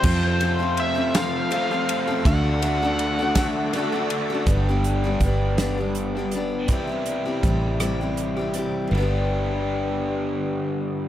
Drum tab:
CC |x-----|------|------|------|
RD |-xxxxx|xxxxxx|------|------|
HH |------|------|xxxxxx|xxxxxx|
SD |---o--|---o--|---o--|---r--|
BD |o-----|o--o--|o-o---|o-o---|

CC |------|
RD |------|
HH |------|
SD |------|
BD |------|